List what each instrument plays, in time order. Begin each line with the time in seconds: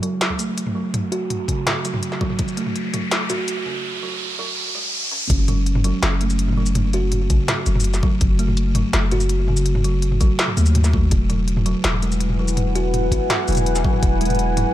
Already playing: ambient pad E4 F#4 B4 C#5 E5 A5, riser
0.02 kalimba F#3, closed hi-hat
0.21 snare, closed hi-hat
0.30 mid tom
0.39 kalimba A3, closed hi-hat, shaker
0.58 closed hi-hat, shaker
0.67 mid tom
0.75 kalimba F#3
0.94 closed hi-hat, mid tom
1.12 kalimba F#4, closed hi-hat
1.30 closed hi-hat, mid tom
1.48 kalimba C#3, kick, closed hi-hat
1.67 snare, closed hi-hat, mid tom
1.85 kalimba F#3, closed hi-hat, shaker
1.94 mid tom
2.03 closed hi-hat
2.12 snare
2.21 kalimba F#3, kick
2.30 mid tom
2.39 kick, closed hi-hat
2.48 shaker
2.57 kalimba A3, closed hi-hat
2.66 mid tom
2.76 closed hi-hat
2.94 kalimba F#3, closed hi-hat, mid tom
3.11 snare, closed hi-hat
3.30 kalimba F#4, closed hi-hat, mid tom, shaker
3.48 closed hi-hat, shaker
3.66 kalimba C#3, mid tom
4.03 kalimba F#3
4.39 kalimba F#3
4.75 kalimba G#3
5.11 kalimba C#4
5.30 808-style bass F#1, kick, closed hi-hat
5.48 kalimba F#3, closed hi-hat, mid tom
5.66 closed hi-hat
5.75 mid tom
5.84 kalimba F#3, closed hi-hat
6.03 808-style bass F#1, snare, closed hi-hat
6.21 kalimba A3, closed hi-hat
6.30 shaker
6.39 closed hi-hat
6.48 mid tom
6.53 mid tom
6.57 kalimba F#3, mid tom
6.62 mid tom
6.66 shaker
6.75 closed hi-hat, mid tom
6.93 kalimba F#4, closed hi-hat
7.12 closed hi-hat, mid tom
7.30 808-style bass A1, kalimba C#3, kick, closed hi-hat, shaker
7.48 snare, closed hi-hat, mid tom
7.66 808-style bass F#1, kalimba F#3, closed hi-hat, shaker
7.75 mid tom
7.80 shaker
7.84 closed hi-hat
7.94 snare, shaker
8.03 kalimba F#3, kick
8.21 808-style bass F#1, kick, closed hi-hat, mid tom
8.39 kalimba A3, closed hi-hat
8.48 mid tom
8.57 closed hi-hat
8.75 kalimba F#3, closed hi-hat, mid tom
8.93 808-style bass F#1, snare, closed hi-hat
9.11 kalimba F#4, closed hi-hat, mid tom
9.20 shaker
9.29 closed hi-hat
9.48 kalimba C#3, mid tom
9.57 shaker
9.66 closed hi-hat
9.75 mid tom
9.84 kalimba F#3, closed hi-hat
10.02 closed hi-hat
10.12 mid tom
10.21 808-style bass A1, kalimba F#3, kick, closed hi-hat, shaker
10.39 snare, closed hi-hat
10.48 mid tom
10.57 808-style bass D#2, kalimba A3, closed hi-hat, shaker
10.66 shaker
10.75 closed hi-hat, mid tom
10.84 snare, shaker
10.93 kalimba F#3, kick
11.11 808-style bass E1, ambient pad E4, kick, closed hi-hat
11.25 ambient pad B4
11.29 kalimba F#3, closed hi-hat, mid tom
11.48 closed hi-hat
11.57 mid tom
11.66 kalimba F#3, closed hi-hat
11.72 ambient pad F#5
11.83 808-style bass E1, ambient pad G#5, snare, closed hi-hat
11.93 mid tom
12.02 kalimba G#3, closed hi-hat
12.12 shaker
12.20 closed hi-hat
12.30 mid tom
12.39 kalimba F#3
12.48 shaker
12.57 closed hi-hat, mid tom
12.75 kalimba F#4, closed hi-hat
12.94 closed hi-hat, mid tom
13.12 808-style bass G#1, kalimba F#4, kick, closed hi-hat, shaker
13.30 snare, closed hi-hat, mid tom
13.48 808-style bass E1, kalimba F#3, closed hi-hat, shaker
13.50 closed hi-hat
13.52 closed hi-hat
13.55 closed hi-hat, mid tom, shaker
13.66 closed hi-hat
13.75 snare, shaker
13.85 kalimba F#3, kick
13.94 mid tom
14.03 808-style bass E1, kick, closed hi-hat
14.21 kalimba G#3, closed hi-hat
14.25 closed hi-hat
14.30 closed hi-hat, mid tom
14.35 closed hi-hat
14.39 closed hi-hat
14.57 kalimba F#3, closed hi-hat, mid tom